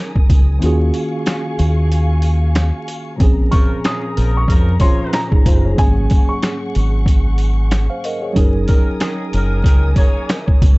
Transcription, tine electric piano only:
0.00 0.56 F#3 medium
0.00 0.57 C#4 medium
0.00 0.58 D#4 medium
0.00 0.59 G#4 medium
0.00 0.60 A#4 loud
0.59 3.15 D#3 medium
0.59 3.15 A#3 medium
0.59 3.16 C#4 medium
0.59 3.17 F4 medium
0.64 3.17 F#4 medium
0.64 3.18 G#4 loud
3.16 4.76 A#2 medium
3.16 4.77 F3 medium
3.16 4.78 C4 medium
3.21 4.79 C#4 medium
3.21 4.80 G#4 medium
4.80 5.77 A#2 medium
4.80 5.78 F3 medium
4.80 5.77 C#4 medium
4.80 5.15 F4 medium
4.80 5.46 C5 medium
5.32 5.45 D#4 medium
5.32 5.45 G#4 medium
5.47 5.64 F4 medium
5.47 5.64 C5 medium
5.65 5.79 G#4 medium
5.65 5.95 C#5 medium
5.74 8.30 G#2 medium
5.74 8.31 F#3 medium
5.74 8.32 A#3 medium
5.79 8.32 C#4 medium
5.79 7.69 G#4 medium
7.90 8.03 C5 medium
7.90 8.03 F5 medium
8.05 8.22 A#4 medium
8.05 8.22 D#5 medium
8.22 8.37 G#4 medium
8.22 8.53 C#5 medium
8.33 10.78 F#3 medium
8.33 10.78 C#4 medium
8.33 10.78 D#4 medium
8.38 10.78 G#4 medium
8.38 10.78 A#4 medium

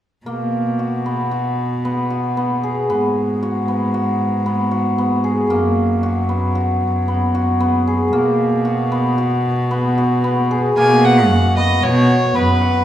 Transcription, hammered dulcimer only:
0.26 1.12 A#3 medium
0.79 1.31 F#4 soft
1.06 1.85 B3 soft
1.31 2.10 F#4 soft
1.85 2.37 B3 medium
2.10 3.42 F#4 soft
2.37 2.89 B3 medium
2.63 5.24 G#4 soft
2.90 3.68 B3 medium
3.43 3.94 F#4 medium
3.68 4.45 B3 medium
3.94 4.71 F#4 medium
4.46 4.98 B3 medium
4.71 6.03 F#4 medium
4.98 5.56 B3 medium
5.24 7.87 G#4 medium
5.50 6.35 A#3 medium
6.03 6.55 F#4 medium
6.29 7.08 B3 medium
6.55 7.34 F#4 medium
7.08 7.60 B3 medium
7.35 8.64 F#4 medium
7.60 8.19 B3 medium
7.87 10.50 G#4 medium
8.13 8.98 A#3 medium
8.65 9.18 F#4 medium
8.92 9.70 B3 medium
9.18 9.97 F#4 medium
9.71 10.24 B3 medium
9.98 11.30 F#4 medium
10.24 10.83 B3 medium
10.51 12.84 G#4 medium
10.77 11.63 A#3 medium
11.31 11.82 F#4 medium
11.57 12.34 B3 medium
11.83 12.61 F#4 medium
12.35 12.84 B3 medium
12.61 12.84 F#4 medium

